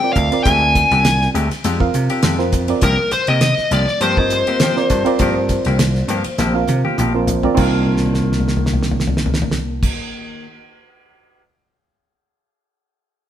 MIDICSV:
0, 0, Header, 1, 8, 480
1, 0, Start_track
1, 0, Key_signature, -3, "minor"
1, 0, Tempo, 593589
1, 364, Time_signature, 4, 2, 24, 8
1, 10749, End_track
2, 0, Start_track
2, 0, Title_t, "Lead electric guitar"
2, 0, Program_c, 0, 29
2, 0, Note_on_c, 0, 79, 77
2, 99, Note_off_c, 0, 79, 0
2, 102, Note_on_c, 0, 77, 74
2, 348, Note_off_c, 0, 77, 0
2, 351, Note_on_c, 0, 80, 79
2, 1045, Note_off_c, 0, 80, 0
2, 2291, Note_on_c, 0, 70, 82
2, 2511, Note_off_c, 0, 70, 0
2, 2527, Note_on_c, 0, 72, 83
2, 2647, Note_off_c, 0, 72, 0
2, 2654, Note_on_c, 0, 75, 94
2, 3014, Note_off_c, 0, 75, 0
2, 3017, Note_on_c, 0, 74, 95
2, 3234, Note_off_c, 0, 74, 0
2, 3247, Note_on_c, 0, 72, 75
2, 5614, Note_off_c, 0, 72, 0
2, 10749, End_track
3, 0, Start_track
3, 0, Title_t, "Reed electric piano"
3, 0, Program_c, 1, 4
3, 22, Note_on_c, 1, 60, 72
3, 27, Note_on_c, 1, 65, 64
3, 30, Note_on_c, 1, 70, 62
3, 33, Note_on_c, 1, 74, 71
3, 239, Note_off_c, 1, 60, 0
3, 242, Note_off_c, 1, 65, 0
3, 243, Note_off_c, 1, 70, 0
3, 244, Note_off_c, 1, 74, 0
3, 257, Note_on_c, 1, 60, 79
3, 263, Note_on_c, 1, 65, 70
3, 265, Note_on_c, 1, 70, 71
3, 270, Note_on_c, 1, 74, 85
3, 1139, Note_off_c, 1, 60, 0
3, 1141, Note_off_c, 1, 65, 0
3, 1142, Note_off_c, 1, 70, 0
3, 1145, Note_off_c, 1, 74, 0
3, 1453, Note_on_c, 1, 60, 80
3, 1455, Note_on_c, 1, 70, 80
3, 1457, Note_on_c, 1, 65, 72
3, 1464, Note_on_c, 1, 77, 95
3, 1895, Note_off_c, 1, 60, 0
3, 1896, Note_off_c, 1, 70, 0
3, 1897, Note_off_c, 1, 65, 0
3, 1900, Note_off_c, 1, 77, 0
3, 1925, Note_on_c, 1, 60, 83
3, 1930, Note_on_c, 1, 65, 77
3, 1932, Note_on_c, 1, 70, 79
3, 1936, Note_on_c, 1, 72, 89
3, 2151, Note_off_c, 1, 60, 0
3, 2153, Note_off_c, 1, 65, 0
3, 2154, Note_off_c, 1, 70, 0
3, 2156, Note_off_c, 1, 72, 0
3, 2172, Note_on_c, 1, 60, 74
3, 2177, Note_on_c, 1, 65, 72
3, 2183, Note_on_c, 1, 70, 71
3, 2184, Note_on_c, 1, 74, 89
3, 2283, Note_off_c, 1, 60, 0
3, 2285, Note_off_c, 1, 65, 0
3, 2288, Note_off_c, 1, 70, 0
3, 2289, Note_off_c, 1, 74, 0
3, 3372, Note_on_c, 1, 60, 70
3, 3373, Note_on_c, 1, 65, 63
3, 3379, Note_on_c, 1, 70, 63
3, 3383, Note_on_c, 1, 75, 76
3, 3815, Note_off_c, 1, 60, 0
3, 3815, Note_off_c, 1, 65, 0
3, 3818, Note_off_c, 1, 70, 0
3, 3820, Note_off_c, 1, 75, 0
3, 3849, Note_on_c, 1, 60, 80
3, 3853, Note_on_c, 1, 65, 78
3, 3857, Note_on_c, 1, 70, 75
3, 3862, Note_on_c, 1, 74, 86
3, 4073, Note_off_c, 1, 60, 0
3, 4075, Note_off_c, 1, 65, 0
3, 4077, Note_off_c, 1, 70, 0
3, 4079, Note_off_c, 1, 74, 0
3, 4084, Note_on_c, 1, 60, 92
3, 4092, Note_on_c, 1, 65, 84
3, 4092, Note_on_c, 1, 70, 84
3, 4099, Note_on_c, 1, 74, 97
3, 4972, Note_off_c, 1, 60, 0
3, 4976, Note_off_c, 1, 65, 0
3, 4976, Note_off_c, 1, 70, 0
3, 4980, Note_off_c, 1, 74, 0
3, 5284, Note_on_c, 1, 60, 78
3, 5294, Note_on_c, 1, 65, 75
3, 5295, Note_on_c, 1, 77, 88
3, 5296, Note_on_c, 1, 70, 74
3, 5731, Note_off_c, 1, 60, 0
3, 5736, Note_off_c, 1, 65, 0
3, 5736, Note_off_c, 1, 77, 0
3, 5737, Note_off_c, 1, 70, 0
3, 5777, Note_on_c, 1, 60, 80
3, 5779, Note_on_c, 1, 65, 80
3, 5784, Note_on_c, 1, 70, 77
3, 5788, Note_on_c, 1, 72, 95
3, 5997, Note_off_c, 1, 60, 0
3, 5998, Note_off_c, 1, 65, 0
3, 6000, Note_off_c, 1, 70, 0
3, 6003, Note_off_c, 1, 72, 0
3, 6012, Note_on_c, 1, 60, 88
3, 6017, Note_on_c, 1, 65, 81
3, 6021, Note_on_c, 1, 70, 79
3, 6024, Note_on_c, 1, 74, 97
3, 6093, Note_off_c, 1, 60, 0
3, 6103, Note_on_c, 1, 60, 71
3, 6110, Note_off_c, 1, 65, 0
3, 6120, Note_on_c, 1, 65, 70
3, 6126, Note_off_c, 1, 70, 0
3, 6129, Note_off_c, 1, 74, 0
3, 6135, Note_on_c, 1, 70, 67
3, 6149, Note_on_c, 1, 63, 78
3, 7980, Note_off_c, 1, 60, 0
3, 7989, Note_off_c, 1, 65, 0
3, 7997, Note_off_c, 1, 70, 0
3, 8003, Note_off_c, 1, 63, 0
3, 10749, End_track
4, 0, Start_track
4, 0, Title_t, "Clean electric guitar"
4, 0, Program_c, 2, 27
4, 371, Note_on_c, 2, 56, 68
4, 374, Note_on_c, 2, 60, 68
4, 377, Note_on_c, 2, 62, 76
4, 379, Note_on_c, 2, 67, 71
4, 498, Note_off_c, 2, 56, 0
4, 498, Note_off_c, 2, 67, 0
4, 499, Note_off_c, 2, 60, 0
4, 499, Note_off_c, 2, 62, 0
4, 747, Note_on_c, 2, 67, 53
4, 750, Note_on_c, 2, 62, 48
4, 754, Note_on_c, 2, 60, 43
4, 845, Note_off_c, 2, 60, 0
4, 846, Note_off_c, 2, 62, 0
4, 850, Note_off_c, 2, 67, 0
4, 1088, Note_on_c, 2, 56, 59
4, 1094, Note_on_c, 2, 60, 60
4, 1098, Note_on_c, 2, 62, 60
4, 1098, Note_on_c, 2, 67, 72
4, 1213, Note_off_c, 2, 67, 0
4, 1217, Note_off_c, 2, 56, 0
4, 1217, Note_off_c, 2, 60, 0
4, 1217, Note_off_c, 2, 62, 0
4, 1330, Note_on_c, 2, 56, 76
4, 1335, Note_on_c, 2, 60, 89
4, 1338, Note_on_c, 2, 62, 91
4, 1340, Note_on_c, 2, 67, 90
4, 1453, Note_off_c, 2, 67, 0
4, 1454, Note_off_c, 2, 62, 0
4, 1457, Note_off_c, 2, 60, 0
4, 1458, Note_off_c, 2, 56, 0
4, 1698, Note_on_c, 2, 67, 57
4, 1706, Note_on_c, 2, 62, 45
4, 1711, Note_on_c, 2, 60, 47
4, 1801, Note_off_c, 2, 60, 0
4, 1804, Note_off_c, 2, 62, 0
4, 1804, Note_on_c, 2, 56, 63
4, 1806, Note_off_c, 2, 67, 0
4, 1811, Note_on_c, 2, 60, 62
4, 1814, Note_on_c, 2, 62, 67
4, 1816, Note_on_c, 2, 67, 76
4, 1924, Note_off_c, 2, 67, 0
4, 1928, Note_off_c, 2, 62, 0
4, 1930, Note_off_c, 2, 60, 0
4, 1935, Note_off_c, 2, 56, 0
4, 2286, Note_on_c, 2, 53, 70
4, 2290, Note_on_c, 2, 58, 76
4, 2293, Note_on_c, 2, 60, 76
4, 2295, Note_on_c, 2, 67, 82
4, 2409, Note_off_c, 2, 67, 0
4, 2413, Note_off_c, 2, 58, 0
4, 2413, Note_off_c, 2, 60, 0
4, 2416, Note_off_c, 2, 53, 0
4, 2658, Note_on_c, 2, 67, 53
4, 2661, Note_on_c, 2, 60, 51
4, 2669, Note_on_c, 2, 58, 43
4, 2757, Note_off_c, 2, 60, 0
4, 2758, Note_off_c, 2, 58, 0
4, 2760, Note_off_c, 2, 67, 0
4, 3007, Note_on_c, 2, 53, 54
4, 3011, Note_on_c, 2, 58, 59
4, 3011, Note_on_c, 2, 60, 60
4, 3014, Note_on_c, 2, 67, 67
4, 3131, Note_off_c, 2, 67, 0
4, 3132, Note_off_c, 2, 60, 0
4, 3136, Note_off_c, 2, 53, 0
4, 3136, Note_off_c, 2, 58, 0
4, 3249, Note_on_c, 2, 53, 70
4, 3250, Note_on_c, 2, 58, 72
4, 3252, Note_on_c, 2, 60, 80
4, 3255, Note_on_c, 2, 67, 75
4, 3375, Note_off_c, 2, 67, 0
4, 3377, Note_off_c, 2, 53, 0
4, 3378, Note_off_c, 2, 58, 0
4, 3379, Note_off_c, 2, 60, 0
4, 3619, Note_on_c, 2, 67, 43
4, 3626, Note_on_c, 2, 60, 47
4, 3630, Note_on_c, 2, 58, 39
4, 3726, Note_off_c, 2, 67, 0
4, 3730, Note_off_c, 2, 60, 0
4, 3732, Note_off_c, 2, 58, 0
4, 3734, Note_on_c, 2, 53, 59
4, 3741, Note_on_c, 2, 58, 62
4, 3743, Note_on_c, 2, 60, 69
4, 3747, Note_on_c, 2, 67, 65
4, 3857, Note_off_c, 2, 67, 0
4, 3858, Note_off_c, 2, 60, 0
4, 3860, Note_off_c, 2, 53, 0
4, 3862, Note_off_c, 2, 58, 0
4, 4213, Note_on_c, 2, 53, 84
4, 4214, Note_on_c, 2, 58, 79
4, 4218, Note_on_c, 2, 60, 87
4, 4221, Note_on_c, 2, 67, 88
4, 4333, Note_off_c, 2, 67, 0
4, 4334, Note_off_c, 2, 60, 0
4, 4338, Note_off_c, 2, 58, 0
4, 4339, Note_off_c, 2, 53, 0
4, 4580, Note_on_c, 2, 67, 58
4, 4582, Note_on_c, 2, 60, 53
4, 4590, Note_on_c, 2, 58, 46
4, 4679, Note_off_c, 2, 58, 0
4, 4681, Note_off_c, 2, 60, 0
4, 4683, Note_off_c, 2, 67, 0
4, 4929, Note_on_c, 2, 53, 59
4, 4932, Note_on_c, 2, 58, 58
4, 4935, Note_on_c, 2, 60, 66
4, 4937, Note_on_c, 2, 67, 71
4, 5049, Note_off_c, 2, 67, 0
4, 5051, Note_off_c, 2, 60, 0
4, 5054, Note_off_c, 2, 58, 0
4, 5057, Note_off_c, 2, 53, 0
4, 5164, Note_on_c, 2, 53, 81
4, 5169, Note_on_c, 2, 58, 83
4, 5169, Note_on_c, 2, 60, 88
4, 5171, Note_on_c, 2, 67, 93
4, 5288, Note_off_c, 2, 67, 0
4, 5293, Note_off_c, 2, 58, 0
4, 5294, Note_off_c, 2, 60, 0
4, 5295, Note_off_c, 2, 53, 0
4, 5537, Note_on_c, 2, 67, 61
4, 5544, Note_on_c, 2, 60, 49
4, 5547, Note_on_c, 2, 58, 43
4, 5639, Note_off_c, 2, 58, 0
4, 5641, Note_off_c, 2, 60, 0
4, 5645, Note_on_c, 2, 53, 68
4, 5646, Note_off_c, 2, 67, 0
4, 5649, Note_on_c, 2, 58, 70
4, 5651, Note_on_c, 2, 60, 65
4, 5655, Note_on_c, 2, 67, 69
4, 5773, Note_off_c, 2, 67, 0
4, 5774, Note_off_c, 2, 60, 0
4, 5775, Note_off_c, 2, 53, 0
4, 5777, Note_off_c, 2, 58, 0
4, 6104, Note_on_c, 2, 51, 77
4, 6134, Note_on_c, 2, 58, 81
4, 6160, Note_on_c, 2, 62, 81
4, 6180, Note_on_c, 2, 65, 75
4, 8456, Note_off_c, 2, 51, 0
4, 8456, Note_off_c, 2, 58, 0
4, 8456, Note_off_c, 2, 62, 0
4, 8456, Note_off_c, 2, 65, 0
4, 10749, End_track
5, 0, Start_track
5, 0, Title_t, "Slap bass"
5, 0, Program_c, 3, 36
5, 127, Note_on_c, 3, 38, 73
5, 232, Note_off_c, 3, 38, 0
5, 369, Note_on_c, 3, 38, 81
5, 670, Note_off_c, 3, 38, 0
5, 736, Note_on_c, 3, 36, 75
5, 1021, Note_off_c, 3, 36, 0
5, 1086, Note_on_c, 3, 38, 75
5, 1192, Note_off_c, 3, 38, 0
5, 1331, Note_on_c, 3, 41, 87
5, 1524, Note_off_c, 3, 41, 0
5, 1572, Note_on_c, 3, 48, 77
5, 1675, Note_off_c, 3, 48, 0
5, 1805, Note_on_c, 3, 41, 82
5, 2196, Note_off_c, 3, 41, 0
5, 2280, Note_on_c, 3, 36, 94
5, 2388, Note_off_c, 3, 36, 0
5, 2651, Note_on_c, 3, 48, 87
5, 2849, Note_off_c, 3, 48, 0
5, 2999, Note_on_c, 3, 36, 83
5, 3108, Note_off_c, 3, 36, 0
5, 3238, Note_on_c, 3, 43, 93
5, 3347, Note_off_c, 3, 43, 0
5, 3374, Note_on_c, 3, 43, 77
5, 3571, Note_off_c, 3, 43, 0
5, 3962, Note_on_c, 3, 43, 73
5, 4070, Note_off_c, 3, 43, 0
5, 4198, Note_on_c, 3, 43, 87
5, 4503, Note_off_c, 3, 43, 0
5, 4575, Note_on_c, 3, 36, 71
5, 4860, Note_off_c, 3, 36, 0
5, 4917, Note_on_c, 3, 43, 78
5, 5027, Note_off_c, 3, 43, 0
5, 5161, Note_on_c, 3, 34, 80
5, 5358, Note_off_c, 3, 34, 0
5, 5403, Note_on_c, 3, 48, 78
5, 5510, Note_off_c, 3, 48, 0
5, 5652, Note_on_c, 3, 34, 85
5, 6041, Note_off_c, 3, 34, 0
5, 6123, Note_on_c, 3, 36, 80
5, 7990, Note_off_c, 3, 36, 0
5, 10749, End_track
6, 0, Start_track
6, 0, Title_t, "Muted clean electric guitar strokes"
6, 18, Note_on_c, 9, 29, 35
6, 99, Note_off_c, 9, 29, 0
6, 135, Note_on_c, 9, 29, 32
6, 216, Note_off_c, 9, 29, 0
6, 508, Note_on_c, 9, 29, 38
6, 589, Note_off_c, 9, 29, 0
6, 617, Note_on_c, 9, 29, 36
6, 698, Note_off_c, 9, 29, 0
6, 855, Note_on_c, 9, 29, 39
6, 936, Note_off_c, 9, 29, 0
6, 1223, Note_on_c, 9, 29, 43
6, 1304, Note_off_c, 9, 29, 0
6, 1462, Note_on_c, 9, 29, 42
6, 1543, Note_off_c, 9, 29, 0
6, 1571, Note_on_c, 9, 29, 39
6, 1651, Note_off_c, 9, 29, 0
6, 1933, Note_on_c, 9, 29, 46
6, 2014, Note_off_c, 9, 29, 0
6, 2052, Note_on_c, 9, 29, 45
6, 2133, Note_off_c, 9, 29, 0
6, 2419, Note_on_c, 9, 29, 44
6, 2500, Note_off_c, 9, 29, 0
6, 2531, Note_on_c, 9, 29, 34
6, 2612, Note_off_c, 9, 29, 0
6, 2764, Note_on_c, 9, 29, 38
6, 2845, Note_off_c, 9, 29, 0
6, 3141, Note_on_c, 9, 29, 41
6, 3221, Note_off_c, 9, 29, 0
6, 3385, Note_on_c, 9, 29, 42
6, 3466, Note_off_c, 9, 29, 0
6, 3494, Note_on_c, 9, 29, 37
6, 3575, Note_off_c, 9, 29, 0
6, 3866, Note_on_c, 9, 29, 44
6, 3947, Note_off_c, 9, 29, 0
6, 3981, Note_on_c, 9, 29, 39
6, 4062, Note_off_c, 9, 29, 0
6, 4343, Note_on_c, 9, 29, 45
6, 4423, Note_off_c, 9, 29, 0
6, 4454, Note_on_c, 9, 29, 41
6, 4535, Note_off_c, 9, 29, 0
6, 4687, Note_on_c, 9, 29, 42
6, 4768, Note_off_c, 9, 29, 0
6, 5059, Note_on_c, 9, 29, 48
6, 5139, Note_off_c, 9, 29, 0
6, 5298, Note_on_c, 9, 29, 45
6, 5379, Note_off_c, 9, 29, 0
6, 5412, Note_on_c, 9, 29, 37
6, 5493, Note_off_c, 9, 29, 0
6, 5783, Note_on_c, 9, 29, 45
6, 5864, Note_off_c, 9, 29, 0
6, 5891, Note_on_c, 9, 29, 41
6, 5972, Note_off_c, 9, 29, 0
6, 10749, End_track
7, 0, Start_track
7, 0, Title_t, "Muted slap bass strokes"
7, 1216, Note_on_c, 9, 29, 33
7, 1297, Note_off_c, 9, 29, 0
7, 2526, Note_on_c, 9, 29, 33
7, 2607, Note_off_c, 9, 29, 0
7, 2896, Note_on_c, 9, 29, 30
7, 2977, Note_off_c, 9, 29, 0
7, 5054, Note_on_c, 9, 29, 32
7, 5135, Note_off_c, 9, 29, 0
7, 10749, End_track
8, 0, Start_track
8, 0, Title_t, "Drums"
8, 126, Note_on_c, 9, 44, 76
8, 126, Note_on_c, 9, 51, 54
8, 128, Note_on_c, 9, 36, 68
8, 206, Note_off_c, 9, 44, 0
8, 206, Note_off_c, 9, 51, 0
8, 209, Note_off_c, 9, 36, 0
8, 257, Note_on_c, 9, 51, 56
8, 338, Note_off_c, 9, 51, 0
8, 366, Note_on_c, 9, 44, 75
8, 366, Note_on_c, 9, 51, 70
8, 369, Note_on_c, 9, 36, 95
8, 447, Note_off_c, 9, 44, 0
8, 447, Note_off_c, 9, 51, 0
8, 450, Note_off_c, 9, 36, 0
8, 609, Note_on_c, 9, 36, 69
8, 609, Note_on_c, 9, 44, 76
8, 609, Note_on_c, 9, 51, 59
8, 612, Note_on_c, 9, 38, 31
8, 690, Note_off_c, 9, 36, 0
8, 690, Note_off_c, 9, 44, 0
8, 690, Note_off_c, 9, 51, 0
8, 693, Note_off_c, 9, 38, 0
8, 739, Note_on_c, 9, 51, 61
8, 742, Note_on_c, 9, 38, 28
8, 820, Note_off_c, 9, 51, 0
8, 823, Note_off_c, 9, 38, 0
8, 846, Note_on_c, 9, 44, 77
8, 846, Note_on_c, 9, 51, 73
8, 849, Note_on_c, 9, 38, 99
8, 926, Note_off_c, 9, 44, 0
8, 926, Note_off_c, 9, 51, 0
8, 930, Note_off_c, 9, 38, 0
8, 982, Note_on_c, 9, 38, 31
8, 1063, Note_off_c, 9, 38, 0
8, 1092, Note_on_c, 9, 44, 79
8, 1092, Note_on_c, 9, 51, 59
8, 1173, Note_off_c, 9, 44, 0
8, 1173, Note_off_c, 9, 51, 0
8, 1223, Note_on_c, 9, 51, 65
8, 1226, Note_on_c, 9, 38, 32
8, 1304, Note_off_c, 9, 51, 0
8, 1307, Note_off_c, 9, 38, 0
8, 1328, Note_on_c, 9, 44, 77
8, 1328, Note_on_c, 9, 51, 76
8, 1409, Note_off_c, 9, 44, 0
8, 1409, Note_off_c, 9, 51, 0
8, 1459, Note_on_c, 9, 36, 76
8, 1540, Note_off_c, 9, 36, 0
8, 1568, Note_on_c, 9, 44, 75
8, 1568, Note_on_c, 9, 51, 56
8, 1649, Note_off_c, 9, 44, 0
8, 1649, Note_off_c, 9, 51, 0
8, 1695, Note_on_c, 9, 51, 63
8, 1776, Note_off_c, 9, 51, 0
8, 1798, Note_on_c, 9, 44, 76
8, 1798, Note_on_c, 9, 51, 79
8, 1802, Note_on_c, 9, 38, 105
8, 1879, Note_off_c, 9, 44, 0
8, 1879, Note_off_c, 9, 51, 0
8, 1883, Note_off_c, 9, 38, 0
8, 1932, Note_on_c, 9, 38, 29
8, 2013, Note_off_c, 9, 38, 0
8, 2041, Note_on_c, 9, 44, 75
8, 2041, Note_on_c, 9, 51, 55
8, 2044, Note_on_c, 9, 36, 71
8, 2122, Note_off_c, 9, 44, 0
8, 2122, Note_off_c, 9, 51, 0
8, 2124, Note_off_c, 9, 36, 0
8, 2167, Note_on_c, 9, 51, 57
8, 2248, Note_off_c, 9, 51, 0
8, 2275, Note_on_c, 9, 44, 73
8, 2275, Note_on_c, 9, 51, 69
8, 2281, Note_on_c, 9, 36, 91
8, 2356, Note_off_c, 9, 44, 0
8, 2356, Note_off_c, 9, 51, 0
8, 2362, Note_off_c, 9, 36, 0
8, 2516, Note_on_c, 9, 44, 75
8, 2516, Note_on_c, 9, 51, 58
8, 2597, Note_off_c, 9, 44, 0
8, 2597, Note_off_c, 9, 51, 0
8, 2644, Note_on_c, 9, 51, 57
8, 2725, Note_off_c, 9, 51, 0
8, 2756, Note_on_c, 9, 44, 73
8, 2756, Note_on_c, 9, 51, 72
8, 2759, Note_on_c, 9, 38, 93
8, 2837, Note_off_c, 9, 44, 0
8, 2837, Note_off_c, 9, 51, 0
8, 2840, Note_off_c, 9, 38, 0
8, 2892, Note_on_c, 9, 38, 30
8, 2972, Note_off_c, 9, 38, 0
8, 3001, Note_on_c, 9, 44, 81
8, 3001, Note_on_c, 9, 51, 55
8, 3082, Note_off_c, 9, 44, 0
8, 3082, Note_off_c, 9, 51, 0
8, 3135, Note_on_c, 9, 38, 31
8, 3216, Note_off_c, 9, 38, 0
8, 3240, Note_on_c, 9, 44, 74
8, 3240, Note_on_c, 9, 51, 69
8, 3321, Note_off_c, 9, 44, 0
8, 3321, Note_off_c, 9, 51, 0
8, 3373, Note_on_c, 9, 36, 78
8, 3454, Note_off_c, 9, 36, 0
8, 3479, Note_on_c, 9, 44, 79
8, 3479, Note_on_c, 9, 51, 56
8, 3560, Note_off_c, 9, 44, 0
8, 3560, Note_off_c, 9, 51, 0
8, 3614, Note_on_c, 9, 51, 58
8, 3695, Note_off_c, 9, 51, 0
8, 3716, Note_on_c, 9, 44, 80
8, 3716, Note_on_c, 9, 51, 76
8, 3720, Note_on_c, 9, 38, 108
8, 3797, Note_off_c, 9, 44, 0
8, 3797, Note_off_c, 9, 51, 0
8, 3800, Note_off_c, 9, 38, 0
8, 3855, Note_on_c, 9, 38, 29
8, 3936, Note_off_c, 9, 38, 0
8, 3959, Note_on_c, 9, 44, 76
8, 3959, Note_on_c, 9, 51, 55
8, 3964, Note_on_c, 9, 36, 73
8, 4040, Note_off_c, 9, 44, 0
8, 4040, Note_off_c, 9, 51, 0
8, 4045, Note_off_c, 9, 36, 0
8, 4090, Note_on_c, 9, 51, 53
8, 4171, Note_off_c, 9, 51, 0
8, 4195, Note_on_c, 9, 44, 75
8, 4195, Note_on_c, 9, 51, 69
8, 4202, Note_on_c, 9, 36, 90
8, 4276, Note_off_c, 9, 44, 0
8, 4276, Note_off_c, 9, 51, 0
8, 4283, Note_off_c, 9, 36, 0
8, 4439, Note_on_c, 9, 44, 77
8, 4439, Note_on_c, 9, 51, 55
8, 4442, Note_on_c, 9, 36, 62
8, 4442, Note_on_c, 9, 38, 29
8, 4520, Note_off_c, 9, 44, 0
8, 4520, Note_off_c, 9, 51, 0
8, 4523, Note_off_c, 9, 36, 0
8, 4523, Note_off_c, 9, 38, 0
8, 4566, Note_on_c, 9, 51, 58
8, 4569, Note_on_c, 9, 38, 31
8, 4647, Note_off_c, 9, 51, 0
8, 4650, Note_off_c, 9, 38, 0
8, 4681, Note_on_c, 9, 44, 72
8, 4681, Note_on_c, 9, 51, 72
8, 4684, Note_on_c, 9, 38, 99
8, 4762, Note_off_c, 9, 44, 0
8, 4762, Note_off_c, 9, 51, 0
8, 4765, Note_off_c, 9, 38, 0
8, 4813, Note_on_c, 9, 38, 30
8, 4894, Note_off_c, 9, 38, 0
8, 4920, Note_on_c, 9, 44, 81
8, 4920, Note_on_c, 9, 51, 60
8, 5001, Note_off_c, 9, 44, 0
8, 5001, Note_off_c, 9, 51, 0
8, 5048, Note_on_c, 9, 51, 65
8, 5129, Note_off_c, 9, 51, 0
8, 5160, Note_on_c, 9, 44, 72
8, 5163, Note_on_c, 9, 38, 53
8, 5241, Note_off_c, 9, 44, 0
8, 5244, Note_off_c, 9, 38, 0
8, 5398, Note_on_c, 9, 44, 79
8, 5398, Note_on_c, 9, 48, 61
8, 5478, Note_off_c, 9, 44, 0
8, 5478, Note_off_c, 9, 48, 0
8, 5538, Note_on_c, 9, 48, 62
8, 5619, Note_off_c, 9, 48, 0
8, 5645, Note_on_c, 9, 44, 81
8, 5645, Note_on_c, 9, 47, 79
8, 5726, Note_off_c, 9, 44, 0
8, 5726, Note_off_c, 9, 47, 0
8, 5882, Note_on_c, 9, 43, 81
8, 5882, Note_on_c, 9, 44, 76
8, 5963, Note_off_c, 9, 43, 0
8, 5963, Note_off_c, 9, 44, 0
8, 6011, Note_on_c, 9, 43, 76
8, 6092, Note_off_c, 9, 43, 0
8, 6120, Note_on_c, 9, 49, 82
8, 6127, Note_on_c, 9, 36, 91
8, 6201, Note_off_c, 9, 49, 0
8, 6207, Note_off_c, 9, 36, 0
8, 6365, Note_on_c, 9, 43, 43
8, 6444, Note_on_c, 9, 38, 44
8, 6446, Note_off_c, 9, 43, 0
8, 6515, Note_on_c, 9, 43, 48
8, 6525, Note_off_c, 9, 38, 0
8, 6584, Note_on_c, 9, 38, 49
8, 6596, Note_off_c, 9, 43, 0
8, 6648, Note_on_c, 9, 43, 47
8, 6665, Note_off_c, 9, 38, 0
8, 6729, Note_off_c, 9, 43, 0
8, 6730, Note_on_c, 9, 38, 47
8, 6790, Note_on_c, 9, 43, 53
8, 6811, Note_off_c, 9, 38, 0
8, 6857, Note_on_c, 9, 38, 57
8, 6871, Note_off_c, 9, 43, 0
8, 6929, Note_on_c, 9, 43, 61
8, 6937, Note_off_c, 9, 38, 0
8, 7005, Note_on_c, 9, 38, 64
8, 7010, Note_off_c, 9, 43, 0
8, 7063, Note_on_c, 9, 43, 66
8, 7086, Note_off_c, 9, 38, 0
8, 7137, Note_on_c, 9, 38, 62
8, 7144, Note_off_c, 9, 43, 0
8, 7209, Note_on_c, 9, 43, 66
8, 7217, Note_off_c, 9, 38, 0
8, 7276, Note_on_c, 9, 38, 69
8, 7290, Note_off_c, 9, 43, 0
8, 7338, Note_on_c, 9, 43, 72
8, 7357, Note_off_c, 9, 38, 0
8, 7415, Note_on_c, 9, 38, 75
8, 7419, Note_off_c, 9, 43, 0
8, 7488, Note_on_c, 9, 43, 80
8, 7496, Note_off_c, 9, 38, 0
8, 7551, Note_on_c, 9, 38, 85
8, 7569, Note_off_c, 9, 43, 0
8, 7617, Note_on_c, 9, 43, 79
8, 7632, Note_off_c, 9, 38, 0
8, 7694, Note_on_c, 9, 38, 85
8, 7698, Note_off_c, 9, 43, 0
8, 7775, Note_off_c, 9, 38, 0
8, 7946, Note_on_c, 9, 36, 95
8, 7949, Note_on_c, 9, 49, 86
8, 8027, Note_off_c, 9, 36, 0
8, 8030, Note_off_c, 9, 49, 0
8, 10749, End_track
0, 0, End_of_file